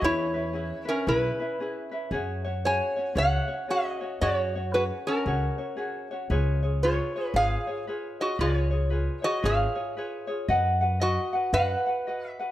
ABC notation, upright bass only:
X:1
M:4/4
L:1/8
Q:"Swing" 1/4=115
K:C#dor
V:1 name="Upright bass" clef=bass
E,,4 B,,, z3 | F,,4 C,, z3 | F,,4 C,, z3 | C,,4 G,,, z3 |
C,,4 G,,, z3 | F,,4 F,, z3 |]